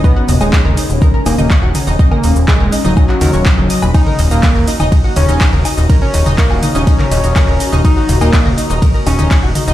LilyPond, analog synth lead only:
\new Staff \with { instrumentName = "Analog synth lead" } { \time 4/4 \key ees \minor \tempo 4 = 123 b8 r16 gis8. r4 bes8 r4 | r16 bes8 r16 gis8 r16 fis2 r16 | ees'8 r16 bes8. r4 des'8 r4 | r16 des'8 r16 bes8 r16 des'2 r16 |
ees'8 r16 bes8. r4 des'8 r4 | }